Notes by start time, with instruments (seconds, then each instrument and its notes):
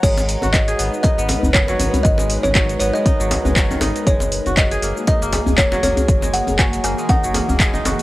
0.02 sub bass G#1, ambient pad G#3 D#4 A#4 B4, kora G#3, kalimba C#5, kick, closed hi-hat, crash, cabasa
0.17 djembe slap, cabasa
0.29 open hi-hat, cabasa
0.42 sub bass G#1, kora F#4, closed hi-hat, djembe tone, cabasa
0.53 kalimba D#5, kick, clap, closed hi-hat, cabasa
0.68 kora G#4, closed hi-hat, cabasa
0.79 sub bass G#1, kora B3, open hi-hat, cabasa
0.94 cabasa
1.03 kora D#4, kalimba D#5, kick, closed hi-hat, djembe slap, cabasa
1.18 sub bass G#1, kora B3, cabasa
1.29 open hi-hat, djembe slap, djembe tone, cabasa
1.43 sub bass F#1, djembe bass, cabasa
1.53 kalimba C#5, kick, clap, closed hi-hat, cabasa
1.68 kora F#3, djembe slap, cabasa
1.79 sub bass G#1, kora B3, open hi-hat, djembe tone, cabasa
1.94 closed hi-hat, djembe bass, cabasa
2.03 sub bass G#1, kalimba D#5, kick, closed hi-hat, cabasa
2.18 kora G#3, djembe slap, cabasa
2.30 open hi-hat, cabasa
2.43 sub bass G#1, kalimba C#5, closed hi-hat, djembe tone, cabasa
2.55 kora F#3, kick, clap, closed hi-hat, cabasa
2.69 closed hi-hat, cabasa
2.79 sub bass G#1, kora B3, kalimba C#5, open hi-hat, cabasa
2.93 kora G#3, kalimba D#5, cabasa
3.06 kora D#4, kick, closed hi-hat, djembe tone, cabasa
3.20 sub bass G#1, kora F#3, cabasa
3.31 open hi-hat, djembe slap, cabasa
3.44 sub bass F#1, kora G#3, djembe bass, cabasa
3.56 kora F#3, kick, clap, closed hi-hat, cabasa
3.70 kora D#3, djembe tone, cabasa
3.81 sub bass G#1, kora D#4, open hi-hat, djembe slap, cabasa
3.96 closed hi-hat, cabasa
4.06 sub bass F#1, kora G#3, ambient pad A#3 F#4 G#4, kalimba C#5, kick, closed hi-hat, cabasa
4.20 djembe slap, cabasa
4.32 open hi-hat, cabasa
4.46 sub bass F#1, kora F#4, closed hi-hat, djembe tone, cabasa
4.57 kalimba D#5, kick, clap, closed hi-hat, cabasa
4.71 kora G#4, closed hi-hat, cabasa
4.82 sub bass F#1, kora A#3, open hi-hat, cabasa
4.97 cabasa
5.07 kora D#4, kalimba D#5, kick, closed hi-hat, djembe slap, cabasa
5.22 sub bass F#1, kora A#3, cabasa
5.33 open hi-hat, djembe slap, djembe tone, cabasa
5.47 sub bass E1, djembe bass, cabasa
5.58 kalimba C#5, kick, clap, closed hi-hat, cabasa
5.72 kora F#3, djembe slap, cabasa
5.83 sub bass F#1, kora A#3, kalimba C#5, open hi-hat, djembe tone, cabasa
5.97 closed hi-hat, djembe bass, cabasa
6.08 sub bass F#1, ambient pad E3, kick, closed hi-hat, cabasa
6.22 kora G#3, djembe slap, cabasa
6.33 kalimba F#5, open hi-hat, cabasa
6.47 sub bass F#1, closed hi-hat, djembe tone, cabasa
6.59 kora F#3, kalimba G#5, kick, clap, closed hi-hat, cabasa
6.73 closed hi-hat, cabasa
6.84 sub bass F#1, kora A#3, kalimba G#5, open hi-hat, cabasa
6.98 kora G#3, cabasa
7.09 kora D#4, kalimba F#5, kick, closed hi-hat, djembe tone, cabasa
7.23 sub bass F#1, kora F#3, cabasa
7.34 kora A#3, open hi-hat, djembe slap, cabasa
7.48 sub bass E1, kora A#3, djembe bass, cabasa
7.60 kora G#3, kick, clap, closed hi-hat, cabasa
7.73 kora D#4, djembe tone, cabasa
7.84 sub bass F#1, kora F#4, open hi-hat, djembe slap, cabasa
7.99 closed hi-hat